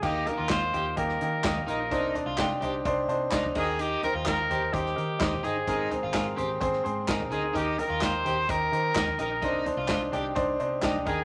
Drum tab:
CC |x---------------|--------------x-|----------------|----------------|
HH |--x-x-x-x-x-x-x-|x-x-x-x-x-x-x---|x-x-x-x-x-x-x-x-|x-x-x-x-x-x-x-x-|
CP |----x-------x---|----x-------x---|----x-------x---|----x-------x---|
SD |----o----o--o---|----o-------o---|----o----o--o---|----o----o--o---|
FT |--o---o------o--|--o---o------o--|--o---o------o--|--o---o------o--|
BD |o---o---o---o---|o---o---o---o-o-|----o---o---o---|o---o---o---o---|

CC |----------------|----------------|
HH |x-x-x-x-x-x-x-x-|x-x-x-x-x-x-x-x-|
CP |----x-------x---|----x-------x---|
SD |----o-------o---|----o-------o---|
FT |--o---o------o--|--o---o------o--|
BD |o---o---o---o---|o---o---o---o-o-|